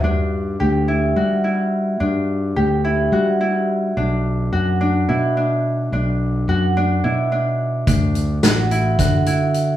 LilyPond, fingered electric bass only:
\new Staff \with { instrumentName = "Fingered electric bass" } { \clef bass \time 7/8 \key g \major \tempo 4 = 107 g,4 d,4 g4. | g,4 d,4 g4. | b,,4 fis,4 b,4. | b,,4 fis,4 b,4. |
d,4 a,,4 d4. | }